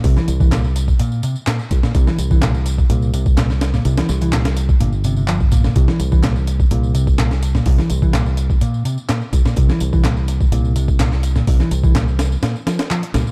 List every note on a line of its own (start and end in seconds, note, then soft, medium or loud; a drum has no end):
0.04 0.19 C2 loud
0.04 0.16 C3 medium
0.04 kick loud
0.04 open hi-hat medium
0.04 tambourine soft
0.17 0.27 E3 loud
0.17 snare soft
0.17 tambourine soft
0.28 0.92 C2 loud
0.28 closed hi-hat medium
0.28 tambourine medium
0.40 0.51 E3 medium
0.40 kick loud
0.40 tambourine soft
0.52 0.63 A#2 loud
0.52 snare loud
0.52 clap loud
0.52 closed hi-hat medium
0.52 tambourine soft
0.64 tambourine soft
0.76 closed hi-hat medium
0.76 tambourine medium
0.88 kick medium
0.88 tambourine soft
0.99 1.22 A#2 medium
0.99 closed hi-hat medium
0.99 tambourine soft
1.12 tambourine soft
1.23 1.35 C3 medium
1.23 closed hi-hat medium
1.23 tambourine medium
1.36 tambourine soft
1.47 1.58 A#2 loud
1.47 snare loud
1.47 clap loud
1.47 closed hi-hat medium
1.47 tambourine soft
1.59 tambourine soft
1.71 1.79 C2 medium
1.71 kick loud
1.71 closed hi-hat medium
1.71 tambourine medium
1.83 1.94 A#2 medium
1.83 snare medium
1.83 tambourine soft
1.95 2.10 C2 loud
1.95 2.06 C3 medium
1.95 kick loud
1.95 closed hi-hat medium
1.95 tambourine soft
2.07 2.17 E3 loud
2.07 snare medium
2.07 tambourine soft
2.18 2.83 C2 loud
2.18 closed hi-hat medium
2.18 tambourine medium
2.31 2.41 E3 medium
2.31 kick loud
2.31 tambourine soft
2.42 2.54 A#2 loud
2.42 snare loud
2.42 clap loud
2.42 closed hi-hat medium
2.42 tambourine soft
2.55 tambourine soft
2.66 closed hi-hat medium
2.66 tambourine medium
2.78 kick medium
2.78 tambourine soft
2.90 3.78 C2 loud
2.90 3.13 A#2 medium
2.90 closed hi-hat medium
2.90 tambourine soft
3.02 tambourine soft
3.14 3.25 C3 medium
3.14 closed hi-hat medium
3.14 tambourine medium
3.26 kick loud
3.26 tambourine soft
3.37 3.49 A#2 loud
3.37 snare loud
3.37 clap loud
3.37 closed hi-hat medium
3.37 tambourine soft
3.50 snare soft
3.50 tambourine soft
3.61 snare loud
3.61 closed hi-hat medium
3.61 tambourine medium
3.74 3.85 A#2 medium
3.74 snare soft
3.74 tambourine soft
3.85 4.00 C2 loud
3.85 3.97 C3 medium
3.85 closed hi-hat medium
3.85 tambourine soft
3.98 4.08 E3 loud
3.98 snare loud
3.98 closed hi-hat medium
3.98 tambourine soft
4.09 4.73 C2 loud
4.09 snare soft
4.09 tambourine medium
4.21 4.32 E3 medium
4.21 closed hi-hat medium
4.21 tambourine soft
4.33 4.44 A#2 loud
4.33 snare loud
4.33 clap loud
4.33 closed hi-hat medium
4.33 tambourine soft
4.45 snare loud
4.45 closed hi-hat medium
4.45 tambourine soft
4.57 closed hi-hat medium
4.57 tambourine medium
4.69 kick medium
4.69 tambourine soft
4.80 5.69 G1 loud
4.80 4.92 A#2 medium
4.80 closed hi-hat medium
4.80 tambourine soft
4.93 tambourine soft
5.04 5.16 C3 medium
5.04 closed hi-hat medium
5.04 tambourine medium
5.16 5.23 C3 medium
5.16 tambourine soft
5.28 5.40 F3 medium
5.28 clap loud
5.28 closed hi-hat medium
5.28 tambourine soft
5.40 kick medium
5.40 tambourine soft
5.51 5.64 A#2 medium
5.51 kick loud
5.51 closed hi-hat medium
5.51 tambourine medium
5.64 5.75 A#2 medium
5.64 snare medium
5.64 tambourine soft
5.76 5.91 C2 loud
5.76 5.87 C3 medium
5.76 kick loud
5.76 closed hi-hat medium
5.76 tambourine soft
5.88 5.98 E3 loud
5.88 snare medium
5.88 tambourine soft
6.00 6.64 C2 loud
6.00 closed hi-hat medium
6.00 tambourine medium
6.12 6.22 E3 medium
6.12 kick loud
6.12 tambourine soft
6.23 6.35 A#2 loud
6.23 snare loud
6.23 clap loud
6.23 closed hi-hat medium
6.23 tambourine soft
6.36 tambourine soft
6.47 closed hi-hat medium
6.47 tambourine medium
6.60 kick loud
6.60 tambourine soft
6.71 7.59 C2 loud
6.71 6.94 A#2 medium
6.71 closed hi-hat medium
6.71 tambourine soft
6.83 tambourine soft
6.95 7.06 C3 medium
6.95 closed hi-hat medium
6.95 tambourine medium
7.07 kick loud
7.07 tambourine soft
7.18 7.30 A#2 loud
7.18 snare loud
7.18 clap loud
7.18 closed hi-hat medium
7.18 tambourine soft
7.31 snare soft
7.31 tambourine soft
7.43 closed hi-hat medium
7.43 tambourine medium
7.55 7.66 A#2 medium
7.55 snare soft
7.55 tambourine soft
7.66 7.81 C2 loud
7.66 7.78 C3 medium
7.66 kick loud
7.66 open hi-hat medium
7.66 tambourine soft
7.78 7.89 E3 loud
7.78 snare soft
7.78 tambourine soft
7.90 8.54 C2 loud
7.90 closed hi-hat medium
7.90 tambourine medium
8.02 8.13 E3 medium
8.02 kick loud
8.02 tambourine soft
8.13 8.25 A#2 loud
8.13 snare loud
8.13 clap loud
8.13 closed hi-hat medium
8.13 tambourine soft
8.26 tambourine soft
8.37 closed hi-hat medium
8.37 tambourine medium
8.50 kick loud
8.50 tambourine soft
8.61 8.84 A#2 medium
8.61 closed hi-hat medium
8.61 tambourine soft
8.74 tambourine soft
8.85 8.96 C3 medium
8.85 closed hi-hat medium
8.85 tambourine medium
8.98 tambourine soft
9.09 9.20 A#2 loud
9.09 snare loud
9.09 clap loud
9.09 closed hi-hat medium
9.09 tambourine soft
9.21 tambourine soft
9.33 9.40 C2 medium
9.33 kick loud
9.33 closed hi-hat medium
9.33 tambourine medium
9.45 9.56 A#2 medium
9.45 snare medium
9.45 tambourine soft
9.56 9.72 C2 loud
9.56 9.68 C3 medium
9.56 kick loud
9.56 closed hi-hat medium
9.56 tambourine soft
9.69 9.79 E3 loud
9.69 snare medium
9.69 tambourine soft
9.80 10.45 C2 loud
9.80 closed hi-hat medium
9.80 tambourine medium
9.93 10.03 E3 medium
9.93 kick loud
9.93 tambourine soft
10.04 10.15 A#2 loud
10.04 snare loud
10.04 clap loud
10.04 closed hi-hat medium
10.04 tambourine soft
10.17 tambourine soft
10.28 closed hi-hat medium
10.28 tambourine medium
10.40 kick medium
10.40 tambourine soft
10.52 11.40 C2 loud
10.52 10.75 A#2 medium
10.52 closed hi-hat medium
10.52 tambourine soft
10.64 tambourine soft
10.76 10.87 C3 medium
10.76 closed hi-hat medium
10.76 tambourine medium
10.88 kick loud
10.88 tambourine soft
11.00 11.11 A#2 loud
11.00 snare loud
11.00 clap loud
11.00 closed hi-hat medium
11.00 tambourine soft
11.12 snare soft
11.12 tambourine soft
11.23 closed hi-hat medium
11.23 tambourine medium
11.36 11.47 A#2 medium
11.36 snare soft
11.36 tambourine soft
11.47 11.62 C2 loud
11.47 11.59 C3 medium
11.47 kick loud
11.47 open hi-hat medium
11.47 tambourine soft
11.60 11.70 E3 loud
11.60 snare soft
11.60 tambourine soft
11.71 12.35 C2 loud
11.71 closed hi-hat medium
11.71 tambourine medium
11.84 11.94 E3 medium
11.84 kick loud
11.84 tambourine soft
11.95 12.06 A#2 loud
11.95 snare loud
11.95 clap loud
11.95 closed hi-hat medium
11.95 tambourine soft
12.08 tambourine soft
12.19 snare loud
12.19 closed hi-hat medium
12.19 tambourine medium
12.32 tambourine soft
12.43 12.54 A#2 medium
12.43 snare loud
12.43 closed hi-hat medium
12.43 tambourine soft
12.56 tambourine soft
12.67 12.78 F3 medium
12.67 snare loud
12.67 closed hi-hat medium
12.67 tambourine medium
12.79 snare loud
12.79 closed hi-hat medium
12.91 13.02 F3 loud
12.91 clap loud
12.91 tambourine soft
13.03 closed hi-hat medium
13.03 tambourine soft
13.14 13.22 C2 medium
13.14 13.25 A#2 loud
13.14 snare loud
13.14 closed hi-hat medium
13.14 tambourine medium
13.26 13.31 A#2 medium
13.26 tambourine soft